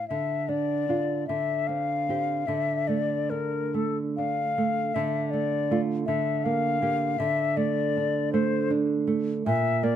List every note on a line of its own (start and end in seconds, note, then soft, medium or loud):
0.08 1.25 D3 soft
0.08 0.50 E5 medium
0.49 0.88 D4 soft
0.49 1.27 D5 medium
0.89 1.25 D4 soft
0.89 1.25 F4 soft
1.28 2.45 D3 medium
1.28 1.69 E5 medium
1.67 2.08 C4 soft
1.67 2.49 F5 medium
2.09 2.44 C4 soft
2.09 2.45 G4 soft
2.47 4.91 D3 medium
2.47 2.89 E5 medium
2.87 3.58 A3 soft
2.87 3.31 D5 medium
3.30 4.01 D4 soft
3.30 3.76 A#4 medium
3.74 4.41 A3 soft
3.74 3.98 A4 medium
4.17 4.80 D4 soft
4.17 4.96 F5 medium
4.58 4.95 A3 soft
4.95 6.05 D3 medium
4.95 5.32 E5 medium
5.30 5.70 A3 soft
5.30 5.81 D5 medium
5.71 6.05 A3 soft
5.71 6.05 F4 soft
6.06 7.17 D3 medium
6.06 6.45 E5 medium
6.44 6.81 A#3 soft
6.44 7.20 F5 medium
6.82 7.16 A#3 soft
6.82 7.17 G4 medium
7.19 9.42 D3 medium
7.19 7.58 E5 medium
7.57 8.18 A3 soft
7.57 8.32 D5 medium
7.97 8.56 D4 medium
8.33 8.93 A3 medium
8.33 8.70 C5 medium
8.70 9.31 D4 soft
9.07 9.46 A3 medium
9.46 9.96 A#2 medium
9.46 9.85 E5 medium
9.83 9.96 A#3 medium
9.83 9.96 D5 medium